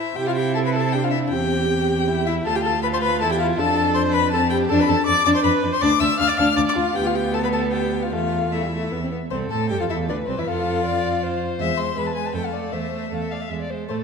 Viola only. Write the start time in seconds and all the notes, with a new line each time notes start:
Already playing: E4
0.17 G4
0.27 F4
0.36 G4
0.56 A4
0.66 B4
0.75 A4
0.95 G4
1.03 F4
1.13 E4
1.33 G4
2.26 E4
2.46 A4
2.55 G4
2.65 A4
2.83 B4
2.93 C5
3.03 B4
3.22 A4
3.31 G4
3.41 F4
3.59 A4
3.95 C5
4.14 B4
4.33 A4
4.51 G4
4.69 A4
4.79 B4
4.89 A4
5.07 D5
5.27 D5
5.36 C5
5.44 B4
5.72 C5
5.81 D5
6.00 E5
6.19 F5
6.28 D5
6.38 F5
6.56 D5
6.66 D5
6.76 F4
6.95 G4
7.05 F4
7.15 G4
7.34 A4
7.44 B4
7.53 A4
7.73 G4
8.03 F4
8.13 F4
8.53 E4
9.31 C4
9.51 A4
9.70 G4
9.80 F4
9.90 E4
10.09 D4
10.28 C4
10.38 E4
10.47 F4
11.60 G#3
11.77 G#3
11.96 G#3
12.16 G#3
12.34 A3
12.53 A3
12.72 A3
12.92 A3
13.11 A3
13.30 A3
13.50 G#3
13.71 G#3
13.90 A3